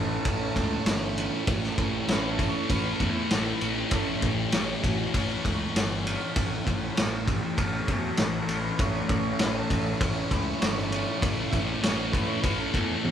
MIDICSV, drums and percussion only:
0, 0, Header, 1, 2, 480
1, 0, Start_track
1, 0, Tempo, 608519
1, 1167, Time_signature, 4, 2, 24, 8
1, 10342, End_track
2, 0, Start_track
2, 0, Title_t, "Drums"
2, 197, Note_on_c, 9, 51, 87
2, 200, Note_on_c, 9, 36, 98
2, 276, Note_off_c, 9, 51, 0
2, 279, Note_off_c, 9, 36, 0
2, 441, Note_on_c, 9, 36, 76
2, 443, Note_on_c, 9, 51, 66
2, 520, Note_off_c, 9, 36, 0
2, 522, Note_off_c, 9, 51, 0
2, 678, Note_on_c, 9, 51, 89
2, 681, Note_on_c, 9, 38, 107
2, 757, Note_off_c, 9, 51, 0
2, 760, Note_off_c, 9, 38, 0
2, 927, Note_on_c, 9, 51, 67
2, 1006, Note_off_c, 9, 51, 0
2, 1160, Note_on_c, 9, 51, 85
2, 1163, Note_on_c, 9, 36, 107
2, 1239, Note_off_c, 9, 51, 0
2, 1242, Note_off_c, 9, 36, 0
2, 1286, Note_on_c, 9, 38, 30
2, 1365, Note_off_c, 9, 38, 0
2, 1402, Note_on_c, 9, 51, 62
2, 1404, Note_on_c, 9, 36, 83
2, 1481, Note_off_c, 9, 51, 0
2, 1482, Note_off_c, 9, 36, 0
2, 1644, Note_on_c, 9, 51, 83
2, 1647, Note_on_c, 9, 38, 110
2, 1723, Note_off_c, 9, 51, 0
2, 1726, Note_off_c, 9, 38, 0
2, 1885, Note_on_c, 9, 36, 83
2, 1885, Note_on_c, 9, 51, 65
2, 1963, Note_off_c, 9, 36, 0
2, 1964, Note_off_c, 9, 51, 0
2, 2127, Note_on_c, 9, 36, 106
2, 2128, Note_on_c, 9, 51, 81
2, 2206, Note_off_c, 9, 36, 0
2, 2207, Note_off_c, 9, 51, 0
2, 2367, Note_on_c, 9, 36, 75
2, 2367, Note_on_c, 9, 51, 64
2, 2445, Note_off_c, 9, 51, 0
2, 2446, Note_off_c, 9, 36, 0
2, 2608, Note_on_c, 9, 51, 87
2, 2611, Note_on_c, 9, 38, 103
2, 2686, Note_off_c, 9, 51, 0
2, 2690, Note_off_c, 9, 38, 0
2, 2849, Note_on_c, 9, 51, 63
2, 2928, Note_off_c, 9, 51, 0
2, 3083, Note_on_c, 9, 51, 87
2, 3089, Note_on_c, 9, 36, 102
2, 3162, Note_off_c, 9, 51, 0
2, 3167, Note_off_c, 9, 36, 0
2, 3330, Note_on_c, 9, 51, 66
2, 3332, Note_on_c, 9, 36, 81
2, 3408, Note_off_c, 9, 51, 0
2, 3410, Note_off_c, 9, 36, 0
2, 3567, Note_on_c, 9, 51, 98
2, 3570, Note_on_c, 9, 38, 108
2, 3646, Note_off_c, 9, 51, 0
2, 3649, Note_off_c, 9, 38, 0
2, 3815, Note_on_c, 9, 36, 90
2, 3818, Note_on_c, 9, 51, 73
2, 3894, Note_off_c, 9, 36, 0
2, 3897, Note_off_c, 9, 51, 0
2, 4056, Note_on_c, 9, 36, 96
2, 4056, Note_on_c, 9, 51, 92
2, 4135, Note_off_c, 9, 36, 0
2, 4135, Note_off_c, 9, 51, 0
2, 4298, Note_on_c, 9, 36, 74
2, 4300, Note_on_c, 9, 51, 71
2, 4377, Note_off_c, 9, 36, 0
2, 4379, Note_off_c, 9, 51, 0
2, 4543, Note_on_c, 9, 51, 94
2, 4546, Note_on_c, 9, 38, 106
2, 4622, Note_off_c, 9, 51, 0
2, 4625, Note_off_c, 9, 38, 0
2, 4785, Note_on_c, 9, 51, 70
2, 4864, Note_off_c, 9, 51, 0
2, 5015, Note_on_c, 9, 51, 90
2, 5018, Note_on_c, 9, 36, 105
2, 5094, Note_off_c, 9, 51, 0
2, 5097, Note_off_c, 9, 36, 0
2, 5259, Note_on_c, 9, 36, 80
2, 5263, Note_on_c, 9, 51, 65
2, 5338, Note_off_c, 9, 36, 0
2, 5342, Note_off_c, 9, 51, 0
2, 5499, Note_on_c, 9, 51, 93
2, 5502, Note_on_c, 9, 38, 115
2, 5578, Note_off_c, 9, 51, 0
2, 5581, Note_off_c, 9, 38, 0
2, 5739, Note_on_c, 9, 36, 91
2, 5742, Note_on_c, 9, 51, 65
2, 5818, Note_off_c, 9, 36, 0
2, 5821, Note_off_c, 9, 51, 0
2, 5978, Note_on_c, 9, 36, 100
2, 5979, Note_on_c, 9, 51, 78
2, 6057, Note_off_c, 9, 36, 0
2, 6058, Note_off_c, 9, 51, 0
2, 6216, Note_on_c, 9, 51, 66
2, 6217, Note_on_c, 9, 36, 72
2, 6294, Note_off_c, 9, 51, 0
2, 6295, Note_off_c, 9, 36, 0
2, 6446, Note_on_c, 9, 51, 85
2, 6450, Note_on_c, 9, 38, 108
2, 6525, Note_off_c, 9, 51, 0
2, 6529, Note_off_c, 9, 38, 0
2, 6693, Note_on_c, 9, 51, 64
2, 6772, Note_off_c, 9, 51, 0
2, 6933, Note_on_c, 9, 51, 91
2, 6934, Note_on_c, 9, 36, 112
2, 7012, Note_off_c, 9, 51, 0
2, 7013, Note_off_c, 9, 36, 0
2, 7171, Note_on_c, 9, 51, 64
2, 7173, Note_on_c, 9, 36, 85
2, 7249, Note_off_c, 9, 51, 0
2, 7252, Note_off_c, 9, 36, 0
2, 7407, Note_on_c, 9, 51, 94
2, 7411, Note_on_c, 9, 38, 109
2, 7486, Note_off_c, 9, 51, 0
2, 7490, Note_off_c, 9, 38, 0
2, 7654, Note_on_c, 9, 36, 87
2, 7656, Note_on_c, 9, 51, 73
2, 7733, Note_off_c, 9, 36, 0
2, 7735, Note_off_c, 9, 51, 0
2, 7893, Note_on_c, 9, 51, 85
2, 7894, Note_on_c, 9, 36, 109
2, 7972, Note_off_c, 9, 51, 0
2, 7973, Note_off_c, 9, 36, 0
2, 8133, Note_on_c, 9, 36, 75
2, 8134, Note_on_c, 9, 51, 68
2, 8212, Note_off_c, 9, 36, 0
2, 8213, Note_off_c, 9, 51, 0
2, 8375, Note_on_c, 9, 51, 91
2, 8378, Note_on_c, 9, 38, 107
2, 8454, Note_off_c, 9, 51, 0
2, 8457, Note_off_c, 9, 38, 0
2, 8496, Note_on_c, 9, 38, 30
2, 8575, Note_off_c, 9, 38, 0
2, 8615, Note_on_c, 9, 51, 66
2, 8694, Note_off_c, 9, 51, 0
2, 8853, Note_on_c, 9, 36, 103
2, 8856, Note_on_c, 9, 51, 95
2, 8932, Note_off_c, 9, 36, 0
2, 8935, Note_off_c, 9, 51, 0
2, 9092, Note_on_c, 9, 36, 82
2, 9094, Note_on_c, 9, 51, 68
2, 9171, Note_off_c, 9, 36, 0
2, 9173, Note_off_c, 9, 51, 0
2, 9334, Note_on_c, 9, 51, 89
2, 9337, Note_on_c, 9, 38, 111
2, 9413, Note_off_c, 9, 51, 0
2, 9416, Note_off_c, 9, 38, 0
2, 9572, Note_on_c, 9, 36, 92
2, 9578, Note_on_c, 9, 51, 69
2, 9650, Note_off_c, 9, 36, 0
2, 9657, Note_off_c, 9, 51, 0
2, 9810, Note_on_c, 9, 36, 101
2, 9811, Note_on_c, 9, 51, 81
2, 9889, Note_off_c, 9, 36, 0
2, 9890, Note_off_c, 9, 51, 0
2, 10049, Note_on_c, 9, 36, 75
2, 10052, Note_on_c, 9, 51, 59
2, 10127, Note_off_c, 9, 36, 0
2, 10131, Note_off_c, 9, 51, 0
2, 10288, Note_on_c, 9, 48, 59
2, 10342, Note_off_c, 9, 48, 0
2, 10342, End_track
0, 0, End_of_file